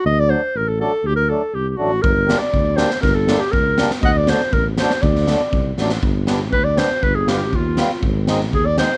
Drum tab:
SD |--------|--------|--o---oo|o-o---oo|
BD |--------|--------|o---o---|o---o---|

SD |--oo--oo|-oo---oo|--o---o-|--o---oo|
BD |o---o---|o---o---|o---o---|o---o---|

SD |--oo--o-|
BD |o---o---|